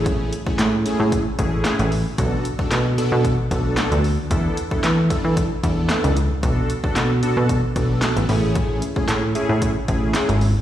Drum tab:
HH |x-x-x-x-x-x-xxo-|x-x-x-x-x-x-xxo-|x-x-x-x-x-x-xxx-|x-x-x-x-x-x-xxo-|
CP |----x-------x---|----x-------x---|----x-------x---|----x-------x---|
SD |----o-------o---|----o-------o---|----o-------o---|----o-------o---|
BD |o--o----o-o-----|o--o----o-o-----|o--o--o-o-o-----|o--o----o-o-----|

HH |x-x-x-x-x-x-xxo-|
CP |----x-------x---|
SD |----o-------o---|
BD |o--o----o-o-----|